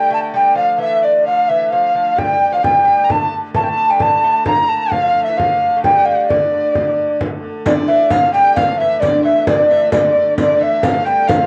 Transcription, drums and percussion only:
2.18 frame drum medium
2.41 frame drum soft
2.64 frame drum medium
2.88 frame drum soft
3.10 frame drum medium
3.54 frame drum medium
3.78 frame drum soft
4.00 frame drum medium
4.24 frame drum soft
4.46 frame drum medium
4.92 frame drum medium
5.16 frame drum soft
5.40 frame drum medium
5.61 frame drum soft
5.84 frame drum medium
6.30 frame drum medium
6.75 frame drum medium
7.21 frame drum medium
7.66 riq medium
7.66 frame drum loud
8.10 riq medium
8.10 frame drum loud
8.34 riq soft
8.56 riq medium
8.56 frame drum medium
9.02 riq medium
9.02 frame drum medium
9.47 riq medium
9.47 frame drum loud
9.70 riq soft
9.92 riq medium
9.92 frame drum loud
10.38 riq medium
10.38 frame drum medium
10.83 riq medium
10.83 frame drum loud
11.06 riq soft
11.29 riq medium
11.29 frame drum loud

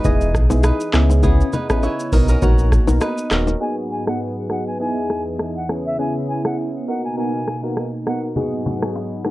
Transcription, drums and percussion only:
0.05 kick loud
0.05 low conga medium
0.05 shaker medium
0.21 shaker soft
0.34 kick medium
0.34 cross-stick medium
0.34 shaker medium
0.50 low bongo medium
0.50 shaker loud
0.63 cross-stick loud
0.63 high bongo medium
0.63 shaker medium
0.81 shaker medium
0.94 cross-stick loud
0.94 clap loud
0.94 shaker medium
1.10 low bongo medium
1.10 shaker medium
1.23 kick loud
1.23 low conga medium
1.23 shaker medium
1.41 shaker medium
1.53 low bongo medium
1.53 low conga medium
1.53 shaker soft
1.70 kick medium
1.70 cross-stick loud
1.70 shaker loud
1.83 high bongo medium
1.83 shaker medium
2.00 shaker medium
2.12 kick loud
2.12 open hi-hat medium
2.12 low bongo medium
2.12 shaker medium
2.28 high bongo soft
2.28 shaker medium
2.42 kick medium
2.42 low conga medium
2.42 shaker medium
2.59 shaker medium
2.72 kick medium
2.72 cross-stick medium
2.72 shaker medium
2.88 low bongo medium
2.88 shaker loud
3.01 cross-stick loud
3.01 high bongo medium
3.01 shaker medium
3.18 shaker medium
3.32 cross-stick loud
3.32 clap loud
3.32 shaker medium
3.47 low bongo medium
3.47 shaker medium
4.07 cross-stick loud
4.50 cross-stick medium
5.10 cross-stick medium
5.39 cross-stick loud
5.69 cross-stick medium
6.45 cross-stick loud
7.48 cross-stick medium
7.77 cross-stick medium
8.07 cross-stick loud
8.36 low conga medium
8.66 low bongo soft
8.66 low conga medium
8.83 cross-stick loud
8.96 high bongo medium
9.25 cross-stick medium
9.25 low bongo medium

